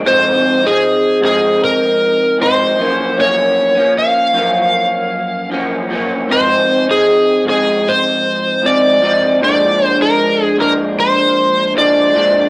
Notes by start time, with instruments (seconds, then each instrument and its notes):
0.04 clean electric guitar G#2 F3 C4 D#4, electric slide guitar C5
0.63 clean electric guitar C4 D#4, electric slide guitar G#4
0.67 clean electric guitar F3
1.21 clean electric guitar G#2 F3 C4 D#4
1.25 electric slide guitar G#4
1.64 electric slide guitar A#4
2.38 clean electric guitar G#2 F3 C4 D#4
2.43 electric slide guitar C5
2.77 clean electric guitar F#2 F3 A#3 C#4
3.17 clean electric guitar F#2 F3 A#3 C#4, electric slide guitar C#5
3.75 clean electric guitar F3 A#3 C#4
3.99 electric slide guitar F5
4.33 clean electric guitar F#2 F3 A#3
4.37 clean electric guitar C#4
5.50 clean electric guitar F#2 F3 A#3 C#4
5.89 clean electric guitar F#2 F3 A#3 C#4
6.28 clean electric guitar G#2 F3 C4 D#4
6.32 electric slide guitar C5
6.87 clean electric guitar F3 C4 D#4
6.91 electric slide guitar G#4
7.45 clean electric guitar G#2 F3 C4 D#4
7.50 electric slide guitar G#4
7.89 electric slide guitar C5
8.62 clean electric guitar G#2 F3 C4 D#4
8.66 electric slide guitar D5
9.01 clean electric guitar G#2 F3 C4 D#4
9.40 clean electric guitar A#2 F3 G#3 D4, electric slide guitar D5
9.85 electric slide guitar C5
9.99 clean electric guitar F3 G#3 D4, electric slide guitar A#4
10.43 electric slide guitar G#4
10.57 clean electric guitar A#2 F3 G#3 D4
10.62 electric slide guitar A#4
11.00 electric slide guitar C5
11.74 clean electric guitar A#2 F3 G#3 D4, electric slide guitar D5
12.13 clean electric guitar A#2 F3 G#3 D4